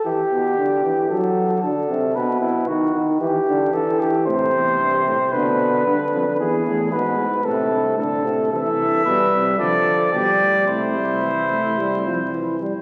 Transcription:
<<
  \new Staff \with { instrumentName = "Trumpet" } { \time 4/4 \key a \minor \tempo 4 = 113 r1 | r1 | r1 | r1 |
\key c \major e''2 d''4 d''4 | c''2.~ c''8 r8 | }
  \new Staff \with { instrumentName = "Flugelhorn" } { \time 4/4 \key a \minor g'2 a'4 a'4 | b'8 e'8 fis'8 r8 g'4 a'8 g'8 | c''2 b'2 | gis'4 b'4 a'4 a'4 |
\key c \major a'4 b'4 a'4 g'4 | e'2.~ e'8 r8 | }
  \new Staff \with { instrumentName = "Euphonium" } { \clef bass \time 4/4 \key a \minor e8 b,8 d8 e8 fis4 d8 c8 | b,4 dis8 dis8 e8 d8 e4 | c2 d4 d4 | e8 a,8 b,8 r8 c4 d8 c8 |
\key c \major e4 g4 f4 g4 | a8 g8 e8 a8 g8 f8 e8 g8 | }
  \new Staff \with { instrumentName = "Bass trombone" } { \clef bass \time 4/4 \key a \minor r1 | r1 | a,8 e,8 g,8 a,8 b,4 g,8 f,8 | e,4 gis,8 gis,8 a,8 g,8 a,4 |
\key c \major c8 g,8 b,8 c8 d4 b,8 a,8 | c2.~ c8 r8 | }
>>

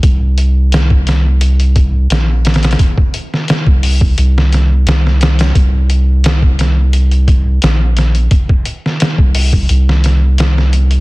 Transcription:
<<
  \new Staff \with { instrumentName = "Sub bass" } { \clef bass \time 4/4 \key bes \mixolydian \tempo 4 = 87 c,2. bes,,4 | r4 r16 c,8. c,4 c,4 | c,2. bes,,4 | r4 r16 c,8. c,4 c,4 | }
  \new DrumStaff \with { instrumentName = "Drums" } \drummode { \time 4/4 <hh bd>8 hh8 <hh sn>16 bd16 <hh sn>8 hh16 hh16 <hh bd>8 <hh sn>8 <hh sn>32 <hh sn>32 <hh sn>32 <hh sn>32 | <hh bd>16 bd16 hh16 sn16 <hh sn>16 bd16 hho16 bd16 hh16 sn16 <hh sn>8 <hh sn>16 sn16 <hh sn>16 <hh sn>16 | <hh bd>8 hh8 <hh sn>16 bd16 <hh sn>8 hh16 hh16 <hh bd>8 <hh sn>8 <hh sn>16 hh16 | <hh bd>16 bd16 hh16 sn16 <hh sn>16 bd16 hho16 bd16 hh16 sn16 <hh sn>8 <hh sn>16 sn16 hh16 hh16 | }
>>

